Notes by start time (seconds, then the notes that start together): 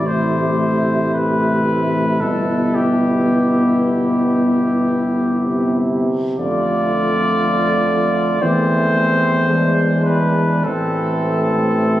Already playing: A1
0.07 C3 A3 E4 C5
1.14 B4
2.20 G1 B2 B3 E4 A4
2.75 G4
5.37 C3
6.37 F2 D3 A3 F4 D5
8.41 E2 E3 A3 C4 C5
9.49 E3 G#3 D4
10.05 B4
10.64 A1 E3 A3 C4 A4